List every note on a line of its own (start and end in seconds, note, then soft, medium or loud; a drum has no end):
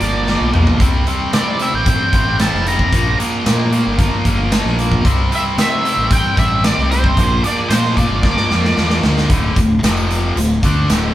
0.00 0.36 G1 medium
0.00 0.26 A#2 medium
0.00 0.27 F3 medium
0.00 0.28 A#3 medium
0.00 0.50 D5 medium
0.00 closed hi-hat medium
0.27 0.53 A#2 medium
0.27 0.54 F3 medium
0.27 0.54 A#3 loud
0.27 snare medium
0.41 0.75 B1 medium
0.54 0.79 A#2 medium
0.54 0.79 F3 medium
0.54 0.79 A#3 medium
0.54 mid tom medium
0.67 floor tom medium
0.80 1.03 C2 medium
0.80 1.06 C3 medium
0.80 1.07 G3 medium
0.80 1.07 C4 loud
0.80 kick loud
0.80 closed hi-hat medium
1.07 1.33 C3 medium
1.07 1.33 G3 medium
1.07 1.34 C4 medium
1.07 closed hi-hat medium
1.33 1.68 C3 medium
1.33 1.59 C3 medium
1.33 1.60 G3 medium
1.33 1.60 C4 medium
1.33 1.61 D5 medium
1.33 snare loud
1.33 closed hi-hat medium
1.59 1.86 C3 medium
1.59 1.87 G3 medium
1.59 1.87 C4 loud
1.59 1.74 E5 medium
1.59 closed hi-hat medium
1.74 1.97 A1 medium
1.74 2.36 G5 medium
1.86 2.13 C3 medium
1.86 2.14 G3 medium
1.86 2.14 C4 medium
1.86 kick loud
1.86 closed hi-hat medium
2.13 2.48 A1 medium
2.13 2.40 C3 medium
2.13 2.39 G3 medium
2.13 2.40 C4 medium
2.13 kick medium
2.13 closed hi-hat medium
2.39 2.66 C3 medium
2.39 2.66 G3 medium
2.39 2.67 C4 loud
2.39 2.67 A5 medium
2.39 snare loud
2.39 closed hi-hat medium
2.53 2.88 F1 medium
2.53 snare soft
2.66 2.92 C3 medium
2.66 2.92 G3 medium
2.66 2.92 C4 medium
2.66 3.17 A#5 medium
2.66 closed hi-hat medium
2.79 kick medium
2.93 3.16 A#1 medium
2.93 3.17 A#2 medium
2.93 3.18 F3 loud
2.93 3.18 A#3 loud
2.93 kick medium
2.93 closed hi-hat medium
3.18 3.45 A#2 medium
3.18 3.45 F3 medium
3.18 3.45 A#3 medium
3.18 closed hi-hat medium
3.46 3.71 A#2 medium
3.46 3.81 A#2 medium
3.46 3.71 F3 medium
3.46 3.72 A#3 medium
3.46 snare loud
3.46 closed hi-hat medium
3.72 3.97 A#2 medium
3.72 3.98 F3 medium
3.72 3.98 A#3 loud
3.72 closed hi-hat medium
3.86 4.09 G1 medium
3.98 4.24 A#2 medium
3.98 4.25 F3 medium
3.98 4.25 A#3 medium
3.98 kick loud
3.98 closed hi-hat medium
4.25 4.60 G1 medium
4.25 4.51 A#2 medium
4.25 4.51 F3 medium
4.25 4.51 A#3 medium
4.25 kick medium
4.25 closed hi-hat medium
4.52 4.77 A#2 loud
4.52 4.77 F3 loud
4.52 4.78 A#3 loud
4.52 snare loud
4.52 closed hi-hat medium
4.65 5.00 A#1 medium
4.65 snare soft
4.78 5.04 A#2 medium
4.78 5.04 F3 medium
4.78 5.04 A#3 medium
4.78 closed hi-hat medium
4.92 kick medium
5.05 5.28 C2 medium
5.05 5.30 C3 medium
5.05 5.30 G3 loud
5.05 5.31 C4 loud
5.05 kick medium
5.05 closed hi-hat medium
5.32 5.57 C3 medium
5.32 5.58 G3 medium
5.32 5.58 C4 medium
5.32 5.42 E5 medium
5.32 closed hi-hat medium
5.58 5.93 C3 medium
5.58 5.84 C3 medium
5.58 5.84 G3 medium
5.58 5.84 C4 medium
5.58 6.09 E5 medium
5.58 snare loud
5.58 closed hi-hat loud
5.85 6.10 C3 medium
5.85 6.10 G3 loud
5.85 6.10 C4 medium
5.85 closed hi-hat medium
5.97 6.21 A1 medium
6.11 6.37 C3 medium
6.11 6.37 G3 medium
6.11 6.37 C4 medium
6.11 6.39 G5 loud
6.11 kick loud
6.11 closed hi-hat medium
6.37 6.73 A1 medium
6.37 6.63 C3 medium
6.37 6.63 G3 medium
6.37 6.64 C4 medium
6.37 6.63 E5 medium
6.37 kick medium
6.37 closed hi-hat medium
6.64 6.91 C3 medium
6.64 6.91 G3 loud
6.64 6.92 C4 loud
6.64 6.89 D5 medium
6.64 snare loud
6.64 closed hi-hat medium
6.78 7.13 C2 medium
6.78 snare soft
6.91 7.17 C3 medium
6.91 7.17 G3 medium
6.91 7.17 C4 medium
6.91 7.41 C5 medium
6.91 closed hi-hat medium
7.04 kick medium
7.17 7.41 A#1 medium
7.17 7.43 A#2 loud
7.17 7.44 F3 loud
7.17 7.44 A#3 loud
7.17 kick medium
7.17 closed hi-hat medium
7.44 7.71 A#2 medium
7.44 7.71 F3 medium
7.44 7.72 A#3 medium
7.44 7.69 D5 medium
7.44 closed hi-hat medium
7.69 8.05 A#2 medium
7.69 7.98 A#2 medium
7.69 7.98 F3 medium
7.69 7.98 A#3 medium
7.69 7.96 C5 medium
7.69 snare loud
7.69 closed hi-hat medium
7.85 snare soft
7.97 8.24 A#2 medium
7.97 8.25 F3 medium
7.97 8.25 A#3 medium
7.97 8.99 D5 medium
7.97 kick medium
7.97 closed hi-hat medium
8.11 8.34 G1 medium
8.23 8.50 A#2 medium
8.23 8.50 F3 medium
8.23 8.51 A#3 medium
8.23 kick loud
8.23 snare medium
8.37 snare medium
8.51 8.75 F2 medium
8.51 8.75 A#2 medium
8.51 8.76 F3 medium
8.51 8.76 A#3 medium
8.51 snare medium
8.65 snare medium
8.77 9.02 E2 medium
8.77 9.03 A#2 medium
8.77 9.03 F3 loud
8.77 9.04 A#3 medium
8.77 snare medium
8.90 snare medium
9.03 9.28 D2 medium
9.03 9.29 A#2 medium
9.03 9.29 F3 medium
9.03 9.29 A#3 medium
9.03 snare medium
9.18 snare medium
9.30 9.55 D1 medium
9.30 9.55 D2 medium
9.30 9.56 A2 medium
9.30 9.56 D3 loud
9.30 kick loud
9.30 closed hi-hat medium
9.56 9.81 D1 medium
9.56 9.78 D2 medium
9.56 9.79 A2 medium
9.56 kick medium
9.56 closed hi-hat medium
9.56 tambourine medium
9.82 10.32 F1 medium
9.82 10.36 F2 medium
9.82 10.37 C3 medium
9.82 10.37 F3 loud
9.82 snare loud
9.82 closed hi-hat loud
9.82 tambourine medium
9.97 tambourine medium
10.10 closed hi-hat medium
10.36 10.61 D1 medium
10.36 10.58 D2 medium
10.36 10.58 A2 medium
10.36 closed hi-hat medium
10.36 tambourine soft
10.49 tambourine soft
10.63 10.88 D2 medium
10.63 10.89 D3 medium
10.63 10.89 A3 medium
10.63 10.90 D4 medium
10.63 kick medium
10.63 closed hi-hat medium
10.63 tambourine medium
10.89 11.14 D1 medium
10.89 11.14 D2 medium
10.89 11.14 A2 medium
10.89 11.14 D3 medium
10.89 snare loud
10.89 closed hi-hat medium
10.89 tambourine medium